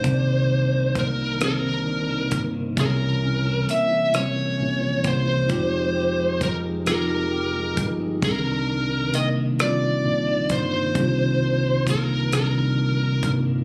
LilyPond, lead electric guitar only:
\new Staff \with { instrumentName = "Lead electric guitar" } { \time 6/8 \key c \minor \tempo 4. = 44 c''4 bes'8 bes'4 r8 | bes'4 e''8 des''4 c''8~ | c''4 bes'8 bes'4 r8 | bes'4 ees''8 d''4 c''8~ |
c''4 bes'8 bes'4 r8 | }